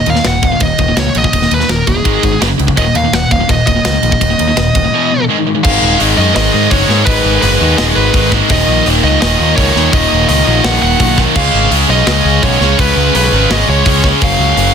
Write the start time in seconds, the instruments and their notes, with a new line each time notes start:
0.06 distorted electric guitar D#2 A#2, picked electric bass D#2, lead electric guitar F5, ride
0.16 distorted electric guitar D#2 A#2, snare
0.24 picked electric bass D#1, distorted electric guitar D#2 A#2, lead electric guitar F#5, snare, ride
0.42 picked electric bass D#1, distorted electric guitar D#2 A#2, lead electric guitar F5, kick, ride
0.52 distorted electric guitar D#2 A#2
0.60 picked electric bass D#1, distorted electric guitar D#2 A#2, lead electric guitar D#5, kick, ride
0.78 picked electric bass D#1, distorted electric guitar D#2 A#2, kick, ride
0.88 distorted electric guitar D#2 A#2
0.97 picked electric bass C#2, distorted electric guitar D#2 A#2, lead electric guitar C#5, snare, ride
1.07 distorted electric guitar D#2 A#2
1.15 picked electric bass A#1, distorted electric guitar D#2 A#2, lead electric guitar D#5, ride
1.23 distorted electric guitar D#2 A#2, kick
1.33 picked electric bass D#1, distorted electric guitar D#2 A#2, kick, ride
1.42 distorted electric guitar D#2 A#2, snare
1.51 distorted electric guitar D#2 A#2, picked electric bass D#2, lead electric guitar B4, ride
1.60 distorted electric guitar D#2 A#2, snare
1.69 picked electric bass D#1, distorted electric guitar D#2 A#2, lead electric guitar A#4, snare, ride
1.87 picked electric bass D#1, distorted electric guitar D#2 A#2, lead electric guitar G#4, kick, ride
1.95 distorted electric guitar D#2 A#2
2.03 picked electric bass G#1, distorted electric guitar G#2 D#3 G#3, kick, ride
2.22 picked electric bass G#1, distorted electric guitar G#2 D#3, kick, ride
2.31 distorted electric guitar G#2 D#3
2.39 picked electric bass F#1, distorted electric guitar F#2 C#3 F#3, snare, ride
2.49 distorted electric guitar F#2 C#3
2.58 picked electric bass C#2, distorted electric guitar F#2 C#3, ride
2.67 distorted electric guitar F#2 C#3, kick
2.76 picked electric bass D#1, distorted electric guitar D#2 A#2 D#3, lead electric guitar D#5, kick, ride
2.85 distorted electric guitar D#2 A#2
2.94 picked electric bass D#2, distorted electric guitar D#2 A#2, lead electric guitar F5, ride
3.04 distorted electric guitar D#2 A#2
3.12 picked electric bass D#1, distorted electric guitar D#2 A#2, lead electric guitar F#5, snare, ride
3.30 picked electric bass D#1, distorted electric guitar D#2 A#2, lead electric guitar F5, kick, ride
3.39 distorted electric guitar D#2 A#2
3.48 picked electric bass D#1, distorted electric guitar D#2 A#2, lead electric guitar D#5, kick, ride
3.66 picked electric bass D#1, distorted electric guitar D#2 A#2, lead electric guitar D#5, kick, ride
3.75 distorted electric guitar D#2 A#2
3.85 picked electric bass C#2, distorted electric guitar D#2 A#2, snare, ride
3.94 distorted electric guitar D#2 A#2
4.03 picked electric bass A#1, distorted electric guitar D#2 A#2, ride
4.11 distorted electric guitar D#2 A#2, kick
4.20 picked electric bass D#1, distorted electric guitar D#2 A#2, kick, ride
4.29 distorted electric guitar D#2 A#2
4.38 distorted electric guitar D#2 A#2, picked electric bass D#2, ride
4.47 distorted electric guitar D#2 A#2
4.57 picked electric bass D#1, distorted electric guitar D#2 A#2, snare, ride
4.74 picked electric bass D#1, distorted electric guitar D#2 A#2, kick, ride
4.83 distorted electric guitar D#2 A#2
4.92 distorted electric guitar E2 B2 E3
5.11 distorted electric guitar E2 B2
5.19 distorted electric guitar E2 B2
5.28 distorted electric guitar G#2 D#3 G#3
5.37 distorted electric guitar G#2 D#3
5.46 distorted electric guitar G#2 D#3
5.55 distorted electric guitar G#2 D#3
5.63 picked electric bass G#1, distorted electric guitar G#2 D#3 G#3, lead electric guitar F5, kick, crash
5.82 picked electric bass D#1
5.98 picked electric bass G#1, distorted electric guitar G#2 D#3 G#3, open hi-hat
6.17 picked electric bass F#2, distorted electric guitar G#2 D#3 G#3, lead electric guitar D#5
6.34 picked electric bass G#1, distorted electric guitar G#2 D#3 G#3, lead electric guitar D#5, snare, open hi-hat
6.54 picked electric bass G#2
6.70 picked electric bass F#1, distorted electric guitar G#2 D#3 G#3, lead electric guitar C#5, kick, open hi-hat
6.88 distorted electric guitar G#2 D#3 G#3, picked electric bass G#2, snare
7.05 picked electric bass G#1, distorted electric guitar G#2 D#3 G#3, lead electric guitar B4, kick, open hi-hat
7.24 picked electric bass G#1
7.41 picked electric bass F#1, distorted electric guitar G#2 D#3 G#3, lead electric guitar B4, open hi-hat
7.59 picked electric bass D#2, distorted electric guitar G#2 D#3 G#3
7.77 picked electric bass D#1, distorted electric guitar G#2 D#3 G#3, lead electric guitar D#5, snare, open hi-hat
7.96 picked electric bass G#1, lead electric guitar B4
8.14 picked electric bass G#1, distorted electric guitar G#2 D#3 G#3, kick, open hi-hat
8.32 distorted electric guitar G#2 D#3 G#3, kick, snare
8.49 picked electric bass D#1, distorted electric guitar D#2 A#2 D#3, lead electric guitar D#5, kick, open hi-hat
8.67 picked electric bass A#1
8.85 picked electric bass D#1, distorted electric guitar D#2 A#2 D#3, open hi-hat
9.04 picked electric bass C#2, distorted electric guitar D#2 A#2 D#3, lead electric guitar D#5
9.21 picked electric bass D#1, distorted electric guitar D#2 A#2 D#3, lead electric guitar D#5, snare, open hi-hat
9.40 picked electric bass D#2
9.56 picked electric bass C#2, distorted electric guitar D#2 A#2 D#3, lead electric guitar C#5, kick, open hi-hat
9.75 distorted electric guitar D#2 A#2 D#3, picked electric bass D#2, snare
9.92 picked electric bass D#1, distorted electric guitar D#2 A#2 D#3, lead electric guitar D#5, kick, open hi-hat
10.12 picked electric bass D#1
10.28 picked electric bass C#2, distorted electric guitar D#2 A#2 D#3, lead electric guitar D#5, open hi-hat
10.46 picked electric bass A#1, distorted electric guitar D#2 A#2 D#3
10.64 picked electric bass A#1, distorted electric guitar D#2 A#2 D#3, lead electric guitar F#5, snare, open hi-hat
10.82 picked electric bass D#1, lead electric guitar F#5
11.00 picked electric bass B1, distorted electric guitar D#2 A#2 D#3, kick, open hi-hat
11.18 distorted electric guitar D#2 A#2 D#3, kick, snare
11.35 picked electric bass C#2, distorted electric guitar C#3 G#3 C#4, lead electric guitar F5, kick, crash
11.54 picked electric bass G#1
11.71 picked electric bass C#2, distorted electric guitar C#3 G#3 C#4, open hi-hat
11.88 picked electric bass B1, distorted electric guitar C#3 G#3 C#4, lead electric guitar D#5
12.07 picked electric bass C#2, distorted electric guitar C#3 G#3 C#4, lead electric guitar D#5, snare, open hi-hat
12.25 picked electric bass C#2
12.42 picked electric bass B1, distorted electric guitar C#3 G#3 C#4, lead electric guitar C#5, kick, open hi-hat
12.60 picked electric bass C#2, distorted electric guitar C#3 G#3 C#4, snare
12.78 picked electric bass C#2, distorted electric guitar C#3 G#3 C#4, lead electric guitar B4, kick, open hi-hat
12.96 picked electric bass C#2
13.14 picked electric bass B1, distorted electric guitar C#3 G#3 C#4, lead electric guitar B4, open hi-hat
13.32 picked electric bass G#1, distorted electric guitar C#3 G#3 C#4
13.50 picked electric bass G#1, distorted electric guitar C#3 G#3 C#4, lead electric guitar D#5, snare, open hi-hat
13.68 picked electric bass C#2, lead electric guitar C#5
13.86 picked electric bass C#2, distorted electric guitar C#3 G#3 C#4, kick, open hi-hat
14.03 distorted electric guitar C#3 G#3 C#4, kick, snare
14.21 picked electric bass F#1, distorted electric guitar F#2 C#3 F#3, lead electric guitar F5, kick, open hi-hat
14.39 picked electric bass C#2
14.57 picked electric bass F#1, distorted electric guitar F#2 C#3 F#3, open hi-hat